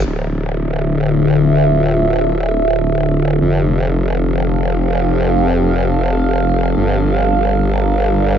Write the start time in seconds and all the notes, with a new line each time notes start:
0.05 D1 D3 D4 F4 A4 E5, crash
3.41 F1 F3 C4 G4 F5
6.77 G1 G3 D4 A#4